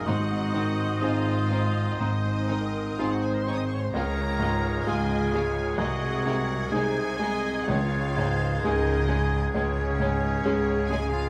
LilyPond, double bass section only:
\new Staff \with { instrumentName = "Double bass section" } { \clef bass \time 4/4 \key des \major \tempo 4 = 64 aes,,4 aes,,4 aes,,4 aes,,4 | des,4 des,4 c,4 c,4 | des,4 des,4 des,4 des,4 | }